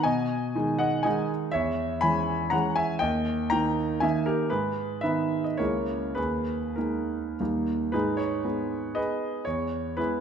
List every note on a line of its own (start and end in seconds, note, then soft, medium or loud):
0.03 0.54 B2 medium
0.03 0.76 D#5 medium
0.03 0.80 G#5 medium
0.55 1.02 D#3 soft
0.55 1.02 G#3 soft
0.55 1.02 D#4 soft
0.79 1.03 D#5 medium
0.79 1.05 F#5 medium
1.03 1.50 D#3 soft
1.03 1.50 G#3 medium
1.03 1.50 D#4 medium
1.03 1.28 D#5 medium
1.03 1.29 G#5 medium
1.52 2.02 E2 medium
1.52 1.99 C#5 medium
1.52 2.02 E5 medium
2.01 2.50 E3 soft
2.01 2.50 G#3 soft
2.01 2.50 C#4 soft
2.01 2.49 G#5 medium
2.01 2.52 B5 medium
2.50 2.97 E3 soft
2.50 2.98 G#3 soft
2.50 2.98 C#4 medium
2.50 2.75 F#5 medium
2.50 2.76 A#5 medium
2.76 2.99 E5 medium
2.76 3.01 G#5 medium
2.99 3.51 D#2 medium
2.99 3.48 D#5 medium
2.99 3.49 G5 medium
3.50 4.00 D#3 soft
3.50 4.00 A#3 soft
3.50 4.00 D#4 soft
3.50 3.99 G5 medium
3.50 4.03 A#5 medium
4.00 4.48 D#3 soft
4.00 4.48 A#3 soft
4.00 4.48 D#4 soft
4.00 4.25 E5 medium
4.00 4.27 G#5 medium
4.26 4.50 G4 medium
4.26 4.51 A#4 medium
4.50 5.02 G#2 medium
4.50 5.00 G#4 medium
4.50 5.01 B4 medium
5.01 5.56 D#3 soft
5.01 5.56 B3 soft
5.01 5.56 D#4 soft
5.01 5.43 B4 medium
5.01 5.45 E5 medium
5.44 5.59 D#5 soft
5.57 6.15 C#2 soft
5.57 6.13 C#3 soft
5.57 6.13 A#3 soft
5.57 6.13 E4 soft
5.57 6.12 A#4 soft
5.57 6.16 C#5 medium
6.15 6.76 D#2 soft
6.15 6.74 G#4 soft
6.15 6.77 B4 medium
6.76 7.36 G#3 soft
6.76 7.36 A#3 soft
6.76 7.35 D#4 soft
6.76 7.38 A#4 soft
7.40 7.93 D#2 soft
7.40 7.91 G3 soft
7.40 7.91 A#3 soft
7.40 7.92 D#4 soft
7.92 8.44 G#2 medium
7.92 8.17 D#4 soft
7.92 8.17 G#4 soft
7.92 8.18 B4 medium
8.17 8.96 C#5 medium
8.44 9.43 G#3 soft
8.44 9.43 B3 soft
8.44 9.43 D#4 soft
8.95 9.43 G#4 medium
8.95 9.43 B4 medium
8.95 9.46 D#5 medium
9.45 9.97 E2 soft
9.45 9.98 C#5 medium
9.97 10.20 G#3 soft
9.97 10.20 B3 soft
9.97 10.20 E4 medium
9.97 10.20 G#4 medium
9.97 10.20 B4 medium